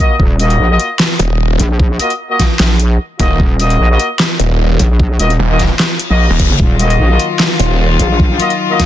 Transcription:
0.00 brass ensemble A#3 F4 F#4 D#5
0.20 wobble bass D#1, kick
0.40 brass ensemble A#3 F4 F#4 D#5, closed hi-hat
0.50 closed hi-hat
0.60 wobble bass A#1
0.70 brass ensemble A#3 F4 F#4 D#5
0.80 closed hi-hat
1.00 snare, clap
1.20 detuned saw bass D#1, closed hi-hat
1.30 detuned saw bass D#1
1.60 wobble bass A#1, closed hi-hat
1.80 kick
2.00 brass ensemble A#3 F4 F#4 D#5, closed hi-hat
2.10 closed hi-hat
2.30 brass ensemble A#3 F4 F#4 D#5
2.40 kick, snare, closed hi-hat
2.60 wobble bass A#1, snare, clap
2.80 closed hi-hat
3.20 detuned saw bass D#1, brass ensemble A#3 F4 F#4 D#5, kick, closed hi-hat
3.40 wobble bass D#1, kick
3.60 brass ensemble A#3 F4 F#4 D#5, closed hi-hat
3.70 closed hi-hat
3.80 wobble bass A#1
3.90 brass ensemble A#3 F4 F#4 D#5
4.00 closed hi-hat
4.20 snare, clap
4.40 detuned saw bass D#1, closed hi-hat
4.50 detuned saw bass D#1
4.80 wobble bass A#1, closed hi-hat
5.00 kick
5.20 wobble bass D#1, brass ensemble A#3 F4 F#4 D#5, closed hi-hat
5.30 closed hi-hat
5.39 detuned saw bass D#1
5.50 detuned saw bass D#1, brass ensemble A#3 F4 F#4 D#5
5.59 kick, snare, closed hi-hat
5.79 snare, clap, reverse cymbal
6.00 closed hi-hat
6.10 wobble bass A#1, brass ensemble A#3 F4 F#4 D#5
6.30 detuned saw bass D#1
6.40 kick, closed hi-hat
6.50 wobble bass F#1
6.60 wobble bass D#1, string section D#3 F#3 F4, kick
6.80 brass ensemble A#3 F4 F#4 D#5, closed hi-hat
6.90 closed hi-hat
6.99 wobble bass A#1
7.10 brass ensemble A#3 F4 F#4 D#5
7.20 closed hi-hat
7.40 snare, clap
7.60 detuned saw bass D#1, closed hi-hat
7.70 detuned saw bass D#1
8.00 wobble bass A#1, closed hi-hat
8.20 kick
8.40 brass ensemble A#3 F4 F#4 D#5, closed hi-hat
8.50 closed hi-hat
8.70 brass ensemble A#3 F4 F#4 D#5
8.80 kick, snare, closed hi-hat

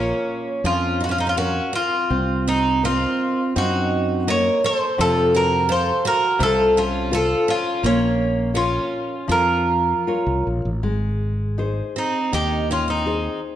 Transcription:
Already playing: fretless electric bass A#1, twelve-string acoustic guitar A#3, bouzouki C#4, nylon-string guitar F4 A#4 C#5
0.64 fretless electric bass F2, nylon-string guitar F3, twelve-string acoustic guitar C#4, bouzouki F4
1.00 twelve-string acoustic guitar D#4, bouzouki F#4
1.09 twelve-string acoustic guitar C#4, bouzouki F4
1.18 twelve-string acoustic guitar C4, bouzouki D#4
1.27 twelve-string acoustic guitar C#4, bouzouki F4
1.37 twelve-string acoustic guitar C#4, bouzouki F#4, nylon-string guitar A#4 F5
1.73 twelve-string acoustic guitar C4, bouzouki F4
2.10 fretless electric bass C2, nylon-string guitar C4
2.48 twelve-string acoustic guitar C4, bouzouki D#4
2.83 twelve-string acoustic guitar C4, bouzouki F4, nylon-string guitar A#4 C5 D#5
3.56 fretless electric bass F#2, nylon-string guitar C4, twelve-string acoustic guitar D#4, bouzouki F#4
4.27 nylon-string guitar A#3 D#5, twelve-string acoustic guitar A#4, bouzouki C#5
4.64 twelve-string acoustic guitar A4, bouzouki C5
4.98 fretless electric bass F2, nylon-string guitar C3, twelve-string acoustic guitar F4, bouzouki A4
5.35 twelve-string acoustic guitar F#4, bouzouki A#4
5.69 twelve-string acoustic guitar A4, nylon-string guitar C5 F5, bouzouki C5
6.05 twelve-string acoustic guitar F#4, bouzouki A#4
6.39 fretless electric bass C2, nylon-string guitar C3, twelve-string acoustic guitar F4, bouzouki A4
6.77 twelve-string acoustic guitar C#4, bouzouki F4
7.11 nylon-string guitar F4 A4 C5, twelve-string acoustic guitar F4, bouzouki A4
7.48 twelve-string acoustic guitar C#4, bouzouki F4
7.83 fretless electric bass A#1, nylon-string guitar A#3, twelve-string acoustic guitar A#3, bouzouki C#4
8.54 twelve-string acoustic guitar C#4, nylon-string guitar F4 A#4 C#5, bouzouki F4
9.28 fretless electric bass F2, nylon-string guitar F3, twelve-string acoustic guitar F4, bouzouki A#4
10.07 nylon-string guitar F4 A#4 C#5
10.26 fretless electric bass C2
10.47 fretless electric bass A#1
10.65 fretless electric bass A1
10.83 fretless electric bass G#1, nylon-string guitar G#3
11.58 nylon-string guitar D#4 G#4 C5
11.96 twelve-string acoustic guitar C4, bouzouki D#4
12.32 fretless electric bass D#2, nylon-string guitar D#3, twelve-string acoustic guitar D#4, bouzouki G4
12.71 twelve-string acoustic guitar C#4, bouzouki F4
12.88 twelve-string acoustic guitar C4, bouzouki D#4
13.06 nylon-string guitar D#4 G#4 C5

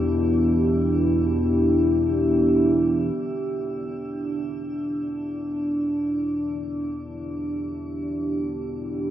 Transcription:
Already playing: synth drone E2 B2, analog synth pad D4 E4 G4
3.16 synth drone E2 B2, analog synth pad D4
4.21 analog synth pad E4
7.00 analog synth pad G4

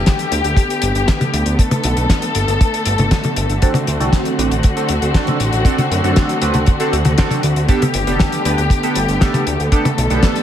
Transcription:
Already playing: string section D3 A3 B3 G4
0.06 kick, snare, closed hi-hat
0.19 closed hi-hat
0.32 analog synth bass D2, closed hi-hat
0.44 analog synth bass D2, closed hi-hat
0.57 kick, closed hi-hat
0.70 closed hi-hat
0.82 analog synth bass G1, closed hi-hat
0.95 analog synth bass G1, closed hi-hat
1.08 kick, snare, closed hi-hat
1.21 closed hi-hat, high tom
1.33 analog synth bass D2, closed hi-hat
1.46 analog synth bass D2, closed hi-hat
1.59 string section A4, kick, closed hi-hat
1.71 closed hi-hat, high tom
1.84 analog synth bass B1, closed hi-hat
1.97 analog synth bass B1, closed hi-hat
2.10 kick, snare, closed hi-hat
2.22 closed hi-hat
2.35 analog synth bass G1, closed hi-hat
2.48 analog synth bass G1, closed hi-hat
2.61 kick, closed hi-hat
2.74 closed hi-hat
2.86 analog synth bass G1, closed hi-hat
2.98 analog synth bass G1, closed hi-hat, high tom
3.11 kick, snare, closed hi-hat
3.24 closed hi-hat, high tom
3.36 analog synth bass G1, closed hi-hat
3.50 analog synth bass G1, closed hi-hat
3.62 analog polysynth C4 D4 F#4 A4, string section C4 F#4, kick, closed hi-hat
3.74 closed hi-hat, high tom
3.87 analog synth bass D2, closed hi-hat
4.00 analog synth bass C2, analog polysynth C4 D4 F#4 A4, closed hi-hat
4.13 kick, snare, closed hi-hat
4.25 closed hi-hat
4.38 analog synth bass A1, analog polysynth C4 D4 F#4 B4, closed hi-hat
4.51 analog synth bass A1, closed hi-hat
4.63 kick, closed hi-hat
4.77 analog polysynth C4 D4 F#4 A4, closed hi-hat
4.89 analog synth bass D2, closed hi-hat
5.02 analog synth bass D2, closed hi-hat
5.14 analog polysynth C4 D4 F#4 A4, kick, snare, closed hi-hat
5.27 closed hi-hat, high tom
5.40 analog synth bass A1, closed hi-hat
5.53 analog synth bass A1, closed hi-hat
5.65 analog polysynth C4 D4 F#4 A4, kick, closed hi-hat
5.78 closed hi-hat, high tom
5.91 analog synth bass F#2, closed hi-hat
6.04 analog synth bass F#2, analog polysynth C4 D4 F#4 A4, closed hi-hat
6.16 kick, snare, closed hi-hat
6.29 closed hi-hat
6.42 analog synth bass D2, analog polysynth C4 D4 F#4 B4, closed hi-hat
6.54 analog synth bass D2, closed hi-hat, high tom
6.66 kick, closed hi-hat
6.80 analog polysynth C4 D4 F#4 A4, closed hi-hat
6.93 analog synth bass D2, closed hi-hat
7.05 analog synth bass D2, closed hi-hat, high tom
7.18 analog polysynth C4 D4 F#4 A4, kick, snare, closed hi-hat
7.31 closed hi-hat, high tom
7.43 analog synth bass D2, closed hi-hat
7.56 analog synth bass D2, closed hi-hat
7.69 string section A3 B3 G4, analog polysynth B3 D4 G4 A4, kick, closed hi-hat
7.82 closed hi-hat, high tom
7.94 analog synth bass G1, closed hi-hat
8.07 analog synth bass F1, analog polysynth B3 D4 G4 A4, closed hi-hat
8.19 kick, snare, closed hi-hat
8.32 closed hi-hat
8.45 analog synth bass D2, analog polysynth B3 D4 G4 B4, closed hi-hat
8.58 analog synth bass D2, closed hi-hat
8.70 kick, closed hi-hat
8.83 analog polysynth B3 D4 G4 A4, closed hi-hat
8.95 analog synth bass G1, closed hi-hat
9.08 analog synth bass G1, closed hi-hat
9.21 analog polysynth B3 D4 G4 A4, kick, snare, closed hi-hat
9.34 closed hi-hat, high tom
9.47 analog synth bass D2, closed hi-hat
9.60 analog synth bass D2, closed hi-hat
9.72 analog polysynth B3 D4 G4 A4, string section A4, kick, closed hi-hat
9.85 closed hi-hat, high tom
9.98 analog synth bass B1, closed hi-hat
10.10 analog synth bass B1, analog polysynth B3 D4 G4 A4, closed hi-hat
10.23 kick, snare, closed hi-hat
10.36 closed hi-hat

